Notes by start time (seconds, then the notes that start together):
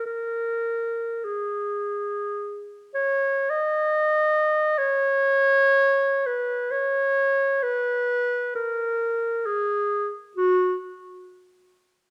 0.06 A#4
1.25 G#4
2.95 C#5
3.50 D#5
4.78 C#5
6.27 B4
6.71 C#5
7.63 B4
8.55 A#4
9.46 G#4
10.37 F#4